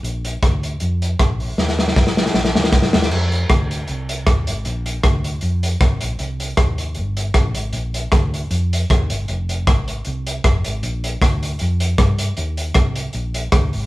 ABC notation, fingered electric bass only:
X:1
M:4/4
L:1/8
Q:"Swing" 1/4=156
K:Bbmix
V:1 name="Fingered electric bass" clef=bass
B,,,2 D,,2 F,,2 B,,,2 | E,,2 C,,2 B,,, D,, C,, E,, | F,,2 D,,2 C,,2 E,, A,,, | B,,,2 D,,2 F,,2 C,, B,,, |
C,,2 E,,2 G,,,2 B,,, A,,, | B,,,2 D,,2 F,,2 E,, G,,, | F,,,2 A,,,2 C,,2 F,,, A,,, | B,,,2 D,,2 F,,2 G,,2 |
E,,2 C,,2 B,,,2 D,, A,,, |]